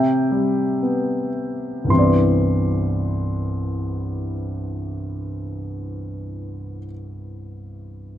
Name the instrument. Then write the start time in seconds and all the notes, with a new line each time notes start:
grand piano
Already playing: C3 E5 G5
0.31 G3
0.82 B3
1.84 C2 G2
1.90 E3 C4 C6
1.96 B3 D5